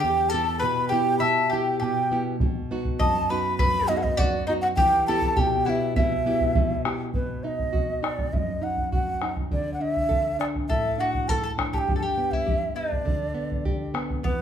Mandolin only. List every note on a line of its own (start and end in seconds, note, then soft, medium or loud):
0.00 0.30 G4 medium
0.30 0.61 A4 medium
0.60 0.89 B4 medium
0.89 1.18 G4 medium
1.20 1.48 E5 medium
1.50 1.78 G4 medium
1.80 2.22 G4 medium
2.99 3.30 D#5 medium
3.30 3.58 B4 medium
3.59 3.88 B4 medium
3.88 3.97 D#4 medium
3.97 4.02 A4 medium
4.02 4.17 D#4 medium
4.17 4.46 F#4 medium
4.47 4.52 D#4 medium
4.63 4.68 F#4 medium
4.77 5.05 G4 medium
5.08 5.37 A4 medium
5.37 5.66 G4 medium
5.66 5.95 E4 medium
5.96 6.81 E4 medium
10.70 10.97 A4 medium
11.00 11.29 F#4 medium
11.29 11.42 A4 medium
11.44 11.51 A4 medium
11.73 11.94 G4 medium
11.96 12.02 A4 medium
12.02 12.33 G4 medium
12.33 12.77 E4 medium
12.76 13.90 D4 medium
14.24 14.42 B3 medium